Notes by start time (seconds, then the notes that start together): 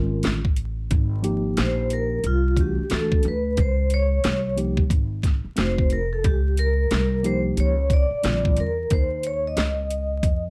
Already playing: G#1 D#3 G#3 C#4 F4 A#4
0.23 A1, snare, closed hi-hat
0.45 kick
0.56 closed hi-hat
0.91 G#1, kick, closed hi-hat
1.22 F3 A#3 D#4 G4, closed hi-hat
1.57 A#1 C5, snare, closed hi-hat
1.90 A#4, closed hi-hat
2.24 C2 F4, closed hi-hat
2.57 E3 A3 D4 F#4 G4, kick, closed hi-hat
2.78 muted upright bass stroke
2.89 D2 E3 A3 D4 F#4, snare, closed hi-hat
2.94 A4
3.12 kick
3.23 D2, closed hi-hat
3.28 B4
3.57 C#2 C5, kick, closed hi-hat
3.90 C#5, closed hi-hat
4.24 C2, snare, closed hi-hat
4.56 F3 A#3 D#4 G4, closed hi-hat
4.77 kick
4.90 G#1, kick, closed hi-hat
5.23 kick, snare, closed hi-hat
5.44 muted upright bass stroke
5.56 F1 A3 C4 D#4 F#4 C5, snare, closed hi-hat
5.78 kick
5.90 A#4, closed hi-hat
6.13 A4
6.24 C#2 G4, kick, closed hi-hat
6.57 A#4, closed hi-hat
6.91 C2, snare, closed hi-hat
7.23 F3 A#3 D#4 G4 C5, closed hi-hat
7.57 C#2 C#5, closed hi-hat
7.90 D5, kick, closed hi-hat
8.11 muted upright bass stroke
8.23 A#1 D3 G3 C4 F4, snare, closed hi-hat
8.45 kick
8.56 E2 A#4, closed hi-hat
8.90 D#2 C5, kick, closed hi-hat
9.23 C#5, closed hi-hat
9.47 D#5
9.57 C#2, snare, closed hi-hat
9.90 closed hi-hat
10.23 F2, kick, closed hi-hat